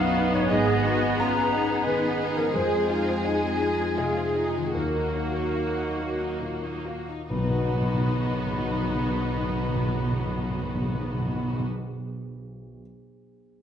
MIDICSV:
0, 0, Header, 1, 11, 480
1, 0, Start_track
1, 0, Tempo, 676437
1, 363, Time_signature, 3, 2, 24, 8
1, 1805, Tempo, 723764
1, 2765, Tempo, 783290
1, 3725, Tempo, 849858
1, 4205, Tempo, 911854
1, 8002, End_track
2, 0, Start_track
2, 0, Title_t, "Flute"
2, 0, Program_c, 0, 73
2, 0, Note_on_c, 0, 77, 78
2, 242, Note_on_c, 0, 73, 69
2, 252, Note_off_c, 0, 77, 0
2, 360, Note_off_c, 0, 73, 0
2, 365, Note_on_c, 0, 75, 72
2, 840, Note_off_c, 0, 75, 0
2, 853, Note_on_c, 0, 82, 86
2, 1314, Note_off_c, 0, 82, 0
2, 1318, Note_on_c, 0, 71, 62
2, 1677, Note_on_c, 0, 70, 62
2, 1688, Note_off_c, 0, 71, 0
2, 1783, Note_off_c, 0, 70, 0
2, 1787, Note_on_c, 0, 72, 60
2, 2274, Note_on_c, 0, 80, 68
2, 2284, Note_off_c, 0, 72, 0
2, 2759, Note_on_c, 0, 68, 53
2, 2768, Note_off_c, 0, 80, 0
2, 3227, Note_off_c, 0, 68, 0
2, 3230, Note_on_c, 0, 70, 46
2, 4186, Note_off_c, 0, 70, 0
2, 4670, Note_on_c, 0, 83, 53
2, 6945, Note_off_c, 0, 83, 0
2, 8002, End_track
3, 0, Start_track
3, 0, Title_t, "Violin section"
3, 0, Program_c, 1, 48
3, 0, Note_on_c, 1, 66, 82
3, 330, Note_off_c, 1, 66, 0
3, 355, Note_on_c, 1, 68, 68
3, 3205, Note_off_c, 1, 68, 0
3, 3227, Note_on_c, 1, 66, 43
3, 4517, Note_off_c, 1, 66, 0
3, 4677, Note_on_c, 1, 66, 47
3, 6951, Note_off_c, 1, 66, 0
3, 8002, End_track
4, 0, Start_track
4, 0, Title_t, "Cello section"
4, 0, Program_c, 2, 48
4, 0, Note_on_c, 2, 63, 74
4, 360, Note_on_c, 2, 68, 72
4, 363, Note_off_c, 2, 63, 0
4, 599, Note_on_c, 2, 66, 69
4, 604, Note_off_c, 2, 68, 0
4, 844, Note_on_c, 2, 65, 63
4, 846, Note_off_c, 2, 66, 0
4, 1079, Note_on_c, 2, 63, 66
4, 1086, Note_off_c, 2, 65, 0
4, 1787, Note_off_c, 2, 63, 0
4, 1798, Note_on_c, 2, 68, 73
4, 2037, Note_off_c, 2, 68, 0
4, 2040, Note_on_c, 2, 65, 65
4, 2276, Note_on_c, 2, 63, 49
4, 2282, Note_off_c, 2, 65, 0
4, 2513, Note_on_c, 2, 68, 56
4, 2520, Note_off_c, 2, 63, 0
4, 2758, Note_on_c, 2, 65, 50
4, 2761, Note_off_c, 2, 68, 0
4, 2989, Note_on_c, 2, 63, 44
4, 2992, Note_off_c, 2, 65, 0
4, 3220, Note_on_c, 2, 66, 56
4, 3230, Note_off_c, 2, 63, 0
4, 4437, Note_off_c, 2, 66, 0
4, 4677, Note_on_c, 2, 47, 54
4, 6952, Note_off_c, 2, 47, 0
4, 8002, End_track
5, 0, Start_track
5, 0, Title_t, "Grand piano"
5, 0, Program_c, 3, 0
5, 0, Control_c, 3, 64, 127
5, 0, Note_on_c, 3, 35, 68
5, 0, Note_on_c, 3, 42, 49
5, 0, Note_on_c, 3, 61, 47
5, 0, Note_on_c, 3, 63, 50
5, 0, Note_on_c, 3, 71, 97
5, 0, Note_on_c, 3, 77, 101
5, 0, Note_on_c, 3, 78, 94
5, 126, Note_off_c, 3, 63, 0
5, 126, Note_on_c, 3, 63, 52
5, 219, Note_off_c, 3, 77, 0
5, 252, Note_on_c, 3, 73, 71
5, 271, Note_off_c, 3, 42, 0
5, 335, Note_off_c, 3, 35, 0
5, 354, Note_on_c, 3, 75, 91
5, 359, Note_off_c, 3, 73, 0
5, 363, Note_off_c, 3, 63, 0
5, 367, Note_on_c, 3, 44, 60
5, 377, Note_off_c, 3, 71, 0
5, 377, Control_c, 3, 64, 0
5, 382, Note_off_c, 3, 78, 0
5, 384, Note_off_c, 3, 61, 0
5, 473, Control_c, 3, 64, 127
5, 598, Note_on_c, 3, 63, 53
5, 816, Note_off_c, 3, 75, 0
5, 841, Note_on_c, 3, 61, 46
5, 850, Note_on_c, 3, 82, 99
5, 989, Note_off_c, 3, 63, 0
5, 1083, Note_on_c, 3, 63, 47
5, 1085, Note_off_c, 3, 61, 0
5, 1298, Note_off_c, 3, 82, 0
5, 1320, Note_on_c, 3, 51, 46
5, 1328, Note_on_c, 3, 71, 72
5, 1466, Note_off_c, 3, 63, 0
5, 1561, Note_on_c, 3, 63, 45
5, 1660, Note_off_c, 3, 71, 0
5, 1695, Note_on_c, 3, 70, 63
5, 1706, Note_off_c, 3, 51, 0
5, 1780, Note_off_c, 3, 44, 0
5, 1803, Note_off_c, 3, 70, 0
5, 1804, Note_off_c, 3, 63, 0
5, 1807, Note_on_c, 3, 41, 55
5, 1807, Note_on_c, 3, 72, 70
5, 1819, Control_c, 3, 64, 0
5, 1938, Control_c, 3, 64, 127
5, 2036, Note_on_c, 3, 65, 45
5, 2256, Note_off_c, 3, 72, 0
5, 2277, Note_on_c, 3, 80, 70
5, 2280, Note_on_c, 3, 63, 38
5, 2424, Note_off_c, 3, 65, 0
5, 2520, Note_on_c, 3, 65, 37
5, 2522, Note_off_c, 3, 63, 0
5, 2737, Note_off_c, 3, 80, 0
5, 2760, Note_on_c, 3, 48, 36
5, 2764, Note_on_c, 3, 68, 70
5, 2901, Note_off_c, 3, 65, 0
5, 2994, Note_on_c, 3, 65, 38
5, 3134, Note_off_c, 3, 48, 0
5, 3208, Note_off_c, 3, 68, 0
5, 3209, Note_off_c, 3, 41, 0
5, 3226, Note_on_c, 3, 70, 55
5, 3232, Note_off_c, 3, 65, 0
5, 3237, Note_on_c, 3, 39, 41
5, 3248, Control_c, 3, 64, 0
5, 3379, Control_c, 3, 64, 127
5, 3471, Note_on_c, 3, 66, 37
5, 3719, Note_on_c, 3, 77, 31
5, 3864, Note_off_c, 3, 66, 0
5, 3957, Note_on_c, 3, 66, 31
5, 3959, Note_off_c, 3, 77, 0
5, 4180, Note_off_c, 3, 70, 0
5, 4199, Note_on_c, 3, 46, 33
5, 4344, Note_off_c, 3, 66, 0
5, 4437, Note_on_c, 3, 66, 30
5, 4584, Note_off_c, 3, 46, 0
5, 4664, Note_off_c, 3, 39, 0
5, 4675, Note_on_c, 3, 71, 50
5, 4676, Note_on_c, 3, 35, 38
5, 4680, Note_off_c, 3, 66, 0
5, 4696, Control_c, 3, 64, 0
5, 4707, Note_on_c, 3, 47, 39
5, 4746, Note_on_c, 3, 59, 44
5, 4783, Note_on_c, 3, 66, 42
5, 4817, Control_c, 3, 64, 127
5, 4820, Note_on_c, 3, 75, 40
5, 4859, Note_on_c, 3, 78, 39
5, 6949, Note_off_c, 3, 71, 0
5, 6950, Note_off_c, 3, 35, 0
5, 6982, Note_off_c, 3, 47, 0
5, 7021, Note_off_c, 3, 59, 0
5, 7058, Note_off_c, 3, 66, 0
5, 7095, Note_off_c, 3, 75, 0
5, 7134, Note_off_c, 3, 78, 0
5, 7579, Control_c, 3, 64, 0
5, 8002, End_track
6, 0, Start_track
6, 0, Title_t, "Harp"
6, 0, Program_c, 4, 46
6, 0, Note_on_c, 4, 47, 60
6, 0, Note_on_c, 4, 63, 54
6, 0, Note_on_c, 4, 66, 56
6, 0, Note_on_c, 4, 71, 55
6, 239, Note_on_c, 4, 44, 57
6, 264, Note_off_c, 4, 63, 0
6, 272, Note_on_c, 4, 63, 50
6, 302, Note_on_c, 4, 68, 49
6, 323, Note_off_c, 4, 47, 0
6, 326, Note_off_c, 4, 71, 0
6, 335, Note_on_c, 4, 71, 52
6, 354, Note_off_c, 4, 66, 0
6, 1680, Note_on_c, 4, 53, 46
6, 1702, Note_off_c, 4, 63, 0
6, 1711, Note_on_c, 4, 63, 43
6, 1733, Note_off_c, 4, 68, 0
6, 1741, Note_on_c, 4, 68, 39
6, 1764, Note_off_c, 4, 44, 0
6, 1772, Note_on_c, 4, 72, 40
6, 1811, Note_off_c, 4, 71, 0
6, 3124, Note_on_c, 4, 51, 38
6, 3142, Note_off_c, 4, 63, 0
6, 3150, Note_on_c, 4, 63, 34
6, 3178, Note_on_c, 4, 66, 35
6, 3198, Note_off_c, 4, 53, 0
6, 3207, Note_on_c, 4, 75, 32
6, 3224, Note_off_c, 4, 68, 0
6, 3238, Note_off_c, 4, 72, 0
6, 4655, Note_off_c, 4, 51, 0
6, 4681, Note_on_c, 4, 47, 41
6, 4718, Note_on_c, 4, 59, 37
6, 4749, Note_off_c, 4, 63, 0
6, 4755, Note_on_c, 4, 63, 41
6, 4786, Note_off_c, 4, 66, 0
6, 4792, Note_on_c, 4, 66, 36
6, 4822, Note_off_c, 4, 75, 0
6, 4829, Note_on_c, 4, 75, 35
6, 4864, Note_on_c, 4, 78, 39
6, 6956, Note_off_c, 4, 47, 0
6, 6992, Note_off_c, 4, 59, 0
6, 7029, Note_off_c, 4, 63, 0
6, 7066, Note_off_c, 4, 66, 0
6, 7103, Note_off_c, 4, 75, 0
6, 7139, Note_off_c, 4, 78, 0
6, 8002, End_track
7, 0, Start_track
7, 0, Title_t, "French horn section"
7, 0, Program_c, 5, 60
7, 0, Note_on_c, 5, 59, 79
7, 0, Note_on_c, 5, 63, 71
7, 353, Note_off_c, 5, 63, 0
7, 362, Note_on_c, 5, 63, 69
7, 1783, Note_off_c, 5, 59, 0
7, 1810, Note_on_c, 5, 56, 61
7, 3127, Note_off_c, 5, 56, 0
7, 3127, Note_off_c, 5, 63, 0
7, 3231, Note_on_c, 5, 63, 47
7, 3235, Note_on_c, 5, 54, 44
7, 4432, Note_off_c, 5, 63, 0
7, 4434, Note_off_c, 5, 54, 0
7, 4678, Note_on_c, 5, 63, 48
7, 4679, Note_on_c, 5, 54, 47
7, 6953, Note_off_c, 5, 63, 0
7, 6954, Note_off_c, 5, 54, 0
7, 8002, End_track
8, 0, Start_track
8, 0, Title_t, "Violin section"
8, 0, Program_c, 6, 48
8, 0, Note_on_c, 6, 63, 64
8, 120, Note_off_c, 6, 63, 0
8, 121, Note_on_c, 6, 59, 65
8, 234, Note_on_c, 6, 63, 58
8, 242, Note_off_c, 6, 59, 0
8, 340, Note_on_c, 6, 56, 52
8, 358, Note_off_c, 6, 63, 0
8, 462, Note_off_c, 6, 56, 0
8, 472, Note_on_c, 6, 59, 57
8, 595, Note_on_c, 6, 63, 64
8, 600, Note_off_c, 6, 59, 0
8, 718, Note_on_c, 6, 59, 64
8, 722, Note_off_c, 6, 63, 0
8, 842, Note_on_c, 6, 56, 62
8, 844, Note_off_c, 6, 59, 0
8, 966, Note_off_c, 6, 56, 0
8, 973, Note_on_c, 6, 59, 55
8, 1090, Note_off_c, 6, 59, 0
8, 1102, Note_on_c, 6, 63, 50
8, 1206, Note_on_c, 6, 59, 50
8, 1214, Note_off_c, 6, 63, 0
8, 1325, Note_off_c, 6, 59, 0
8, 1329, Note_on_c, 6, 56, 54
8, 1446, Note_off_c, 6, 56, 0
8, 1456, Note_on_c, 6, 59, 57
8, 1569, Note_off_c, 6, 59, 0
8, 1580, Note_on_c, 6, 63, 59
8, 1692, Note_off_c, 6, 63, 0
8, 1708, Note_on_c, 6, 59, 51
8, 1816, Note_on_c, 6, 56, 51
8, 1817, Note_off_c, 6, 59, 0
8, 1919, Note_off_c, 6, 56, 0
8, 1940, Note_on_c, 6, 60, 46
8, 2050, Note_off_c, 6, 60, 0
8, 2052, Note_on_c, 6, 63, 49
8, 2167, Note_off_c, 6, 63, 0
8, 2171, Note_on_c, 6, 60, 50
8, 2287, Note_off_c, 6, 60, 0
8, 2289, Note_on_c, 6, 56, 57
8, 2404, Note_on_c, 6, 60, 50
8, 2406, Note_off_c, 6, 56, 0
8, 2515, Note_on_c, 6, 63, 44
8, 2523, Note_off_c, 6, 60, 0
8, 2636, Note_on_c, 6, 60, 43
8, 2640, Note_off_c, 6, 63, 0
8, 2758, Note_on_c, 6, 56, 43
8, 2762, Note_off_c, 6, 60, 0
8, 2870, Note_on_c, 6, 60, 40
8, 2876, Note_off_c, 6, 56, 0
8, 2991, Note_off_c, 6, 60, 0
8, 2993, Note_on_c, 6, 63, 46
8, 3112, Note_off_c, 6, 63, 0
8, 3118, Note_on_c, 6, 60, 41
8, 3235, Note_off_c, 6, 60, 0
8, 3238, Note_on_c, 6, 58, 36
8, 3348, Note_off_c, 6, 58, 0
8, 3353, Note_on_c, 6, 63, 38
8, 3474, Note_on_c, 6, 58, 43
8, 3476, Note_off_c, 6, 63, 0
8, 3591, Note_on_c, 6, 63, 40
8, 3599, Note_off_c, 6, 58, 0
8, 3713, Note_on_c, 6, 58, 46
8, 3721, Note_off_c, 6, 63, 0
8, 3837, Note_off_c, 6, 58, 0
8, 3840, Note_on_c, 6, 63, 38
8, 3960, Note_off_c, 6, 63, 0
8, 3963, Note_on_c, 6, 58, 37
8, 4083, Note_off_c, 6, 58, 0
8, 4086, Note_on_c, 6, 63, 42
8, 4207, Note_off_c, 6, 63, 0
8, 4216, Note_on_c, 6, 58, 37
8, 4326, Note_on_c, 6, 63, 38
8, 4328, Note_off_c, 6, 58, 0
8, 4444, Note_off_c, 6, 63, 0
8, 4446, Note_on_c, 6, 58, 37
8, 4564, Note_off_c, 6, 58, 0
8, 4564, Note_on_c, 6, 63, 34
8, 4673, Note_off_c, 6, 63, 0
8, 4680, Note_on_c, 6, 63, 48
8, 6954, Note_off_c, 6, 63, 0
8, 8002, End_track
9, 0, Start_track
9, 0, Title_t, "Viola section"
9, 0, Program_c, 7, 48
9, 0, Note_on_c, 7, 59, 79
9, 1775, Note_off_c, 7, 59, 0
9, 1809, Note_on_c, 7, 56, 61
9, 3210, Note_off_c, 7, 56, 0
9, 3235, Note_on_c, 7, 58, 48
9, 4520, Note_off_c, 7, 58, 0
9, 4678, Note_on_c, 7, 59, 54
9, 6952, Note_off_c, 7, 59, 0
9, 8002, End_track
10, 0, Start_track
10, 0, Title_t, "Timpani"
10, 0, Program_c, 8, 47
10, 4679, Note_on_c, 8, 47, 57
10, 4711, Note_off_c, 8, 47, 0
10, 4711, Note_on_c, 8, 47, 51
10, 4744, Note_off_c, 8, 47, 0
10, 4744, Note_on_c, 8, 47, 57
10, 4777, Note_off_c, 8, 47, 0
10, 4777, Note_on_c, 8, 47, 55
10, 4809, Note_off_c, 8, 47, 0
10, 4809, Note_on_c, 8, 47, 58
10, 4843, Note_off_c, 8, 47, 0
10, 4844, Note_on_c, 8, 47, 54
10, 4877, Note_off_c, 8, 47, 0
10, 4879, Note_on_c, 8, 47, 58
10, 4910, Note_off_c, 8, 47, 0
10, 4910, Note_on_c, 8, 47, 49
10, 4943, Note_off_c, 8, 47, 0
10, 4944, Note_on_c, 8, 47, 59
10, 4977, Note_off_c, 8, 47, 0
10, 4979, Note_on_c, 8, 47, 53
10, 5013, Note_off_c, 8, 47, 0
10, 5013, Note_on_c, 8, 47, 59
10, 5046, Note_off_c, 8, 47, 0
10, 5047, Note_on_c, 8, 47, 55
10, 5080, Note_off_c, 8, 47, 0
10, 5081, Note_on_c, 8, 47, 58
10, 5112, Note_off_c, 8, 47, 0
10, 5112, Note_on_c, 8, 47, 55
10, 5144, Note_off_c, 8, 47, 0
10, 5144, Note_on_c, 8, 47, 55
10, 5174, Note_off_c, 8, 47, 0
10, 5174, Note_on_c, 8, 47, 55
10, 5208, Note_off_c, 8, 47, 0
10, 5208, Note_on_c, 8, 47, 60
10, 5242, Note_off_c, 8, 47, 0
10, 5243, Note_on_c, 8, 47, 52
10, 5276, Note_off_c, 8, 47, 0
10, 5278, Note_on_c, 8, 47, 52
10, 5311, Note_off_c, 8, 47, 0
10, 5312, Note_on_c, 8, 47, 53
10, 5346, Note_off_c, 8, 47, 0
10, 5347, Note_on_c, 8, 47, 56
10, 5380, Note_off_c, 8, 47, 0
10, 5380, Note_on_c, 8, 47, 57
10, 5414, Note_off_c, 8, 47, 0
10, 5414, Note_on_c, 8, 47, 61
10, 5447, Note_off_c, 8, 47, 0
10, 5447, Note_on_c, 8, 47, 54
10, 5480, Note_off_c, 8, 47, 0
10, 5480, Note_on_c, 8, 47, 61
10, 5513, Note_off_c, 8, 47, 0
10, 5513, Note_on_c, 8, 47, 54
10, 5546, Note_off_c, 8, 47, 0
10, 5546, Note_on_c, 8, 47, 60
10, 5580, Note_off_c, 8, 47, 0
10, 5583, Note_on_c, 8, 47, 52
10, 5617, Note_off_c, 8, 47, 0
10, 5620, Note_on_c, 8, 47, 61
10, 5654, Note_off_c, 8, 47, 0
10, 5654, Note_on_c, 8, 47, 49
10, 5688, Note_off_c, 8, 47, 0
10, 5690, Note_on_c, 8, 47, 58
10, 5724, Note_off_c, 8, 47, 0
10, 5725, Note_on_c, 8, 47, 52
10, 5758, Note_off_c, 8, 47, 0
10, 5760, Note_on_c, 8, 47, 56
10, 5793, Note_off_c, 8, 47, 0
10, 5794, Note_on_c, 8, 47, 50
10, 5826, Note_off_c, 8, 47, 0
10, 5826, Note_on_c, 8, 47, 61
10, 5860, Note_off_c, 8, 47, 0
10, 5861, Note_on_c, 8, 47, 54
10, 5895, Note_off_c, 8, 47, 0
10, 5897, Note_on_c, 8, 47, 59
10, 5931, Note_off_c, 8, 47, 0
10, 5932, Note_on_c, 8, 47, 53
10, 5966, Note_off_c, 8, 47, 0
10, 5966, Note_on_c, 8, 47, 64
10, 6000, Note_off_c, 8, 47, 0
10, 6000, Note_on_c, 8, 47, 54
10, 6032, Note_off_c, 8, 47, 0
10, 6032, Note_on_c, 8, 47, 59
10, 6063, Note_off_c, 8, 47, 0
10, 6063, Note_on_c, 8, 47, 53
10, 6096, Note_off_c, 8, 47, 0
10, 6096, Note_on_c, 8, 47, 58
10, 6129, Note_off_c, 8, 47, 0
10, 6129, Note_on_c, 8, 47, 55
10, 6160, Note_off_c, 8, 47, 0
10, 6160, Note_on_c, 8, 47, 57
10, 6194, Note_off_c, 8, 47, 0
10, 6196, Note_on_c, 8, 47, 55
10, 6230, Note_off_c, 8, 47, 0
10, 6231, Note_on_c, 8, 47, 61
10, 6263, Note_off_c, 8, 47, 0
10, 6263, Note_on_c, 8, 47, 55
10, 6296, Note_off_c, 8, 47, 0
10, 6296, Note_on_c, 8, 47, 60
10, 6327, Note_off_c, 8, 47, 0
10, 6327, Note_on_c, 8, 47, 56
10, 6360, Note_off_c, 8, 47, 0
10, 6360, Note_on_c, 8, 47, 58
10, 6392, Note_off_c, 8, 47, 0
10, 6392, Note_on_c, 8, 47, 51
10, 6425, Note_off_c, 8, 47, 0
10, 6425, Note_on_c, 8, 47, 58
10, 6458, Note_off_c, 8, 47, 0
10, 6458, Note_on_c, 8, 47, 53
10, 6491, Note_off_c, 8, 47, 0
10, 6491, Note_on_c, 8, 47, 56
10, 6524, Note_off_c, 8, 47, 0
10, 6525, Note_on_c, 8, 47, 55
10, 6558, Note_off_c, 8, 47, 0
10, 6558, Note_on_c, 8, 47, 50
10, 6592, Note_off_c, 8, 47, 0
10, 6594, Note_on_c, 8, 47, 59
10, 6628, Note_off_c, 8, 47, 0
10, 6630, Note_on_c, 8, 47, 58
10, 6663, Note_off_c, 8, 47, 0
10, 6663, Note_on_c, 8, 47, 55
10, 6697, Note_off_c, 8, 47, 0
10, 6697, Note_on_c, 8, 47, 60
10, 6730, Note_off_c, 8, 47, 0
10, 6730, Note_on_c, 8, 47, 55
10, 6763, Note_off_c, 8, 47, 0
10, 6763, Note_on_c, 8, 47, 59
10, 6796, Note_off_c, 8, 47, 0
10, 6797, Note_on_c, 8, 47, 53
10, 6829, Note_off_c, 8, 47, 0
10, 6829, Note_on_c, 8, 47, 56
10, 6863, Note_off_c, 8, 47, 0
10, 6866, Note_on_c, 8, 47, 53
10, 6900, Note_off_c, 8, 47, 0
10, 6901, Note_on_c, 8, 47, 62
10, 6935, Note_off_c, 8, 47, 0
10, 6935, Note_on_c, 8, 47, 55
10, 6969, Note_off_c, 8, 47, 0
10, 8002, End_track
11, 0, Start_track
11, 0, Title_t, "Double bass section"
11, 0, Program_c, 10, 48
11, 360, Note_on_c, 10, 32, 77
11, 767, Note_off_c, 10, 32, 0
11, 1805, Note_on_c, 10, 41, 65
11, 2201, Note_off_c, 10, 41, 0
11, 3229, Note_on_c, 10, 39, 52
11, 3640, Note_off_c, 10, 39, 0
11, 4681, Note_on_c, 10, 35, 50
11, 6955, Note_off_c, 10, 35, 0
11, 8002, End_track
0, 0, End_of_file